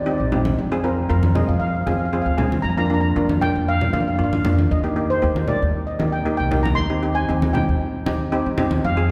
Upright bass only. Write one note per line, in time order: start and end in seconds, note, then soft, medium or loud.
0.00 0.16 D#2 medium
0.20 0.54 A#1 medium
0.58 1.06 F2 medium
1.10 1.45 F2 medium
1.49 1.83 F2 medium
1.87 2.22 F2 medium
2.26 2.61 D2 medium
2.64 3.12 F2 medium
3.16 3.52 F2 medium
3.55 3.90 F2 medium
3.93 4.17 F2 medium
4.19 4.43 G2 medium
4.45 4.68 F2 medium
4.71 5.19 D#2 medium
5.23 5.58 D#2 medium
5.62 5.97 D#2 medium
6.00 6.36 D#2 medium
6.40 6.74 C2 medium
6.78 7.25 D#2 medium
7.30 7.65 D#2 medium
7.69 8.03 D#2 medium
8.07 8.42 D#2 medium
8.46 8.80 D#2 medium
8.84 9.11 F2 loud